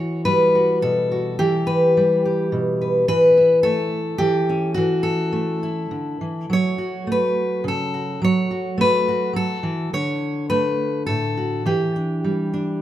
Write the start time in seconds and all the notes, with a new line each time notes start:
Already playing: E3 F#4 C#5
0.25 G3 B4
0.55 F#4
0.82 B2 A4
1.12 F#4
1.39 E3 G4
1.67 B4
1.97 G3
2.25 G4
2.52 B2
2.81 B4
3.08 E3 B4
3.37 E4
3.63 A3 A4
4.18 E3 G4
4.49 C#4
4.74 E3 F#4
5.03 A4
5.33 A3
5.63 E4
5.91 D3
6.21 E3
6.50 F#3 C#5
6.78 F#4
7.07 A3
7.12 B4
7.64 C#3
7.68 A4
7.94 F#4
8.22 F#3 C#5
8.51 F#4
8.78 A3 B4
9.08 F#4
9.33 F#3 A4
9.63 E3
9.93 D3 C#5
10.50 A3 B4
11.06 A2 A4
11.37 F#4
11.66 E3 G4
11.96 D4
12.24 G3
12.54 D4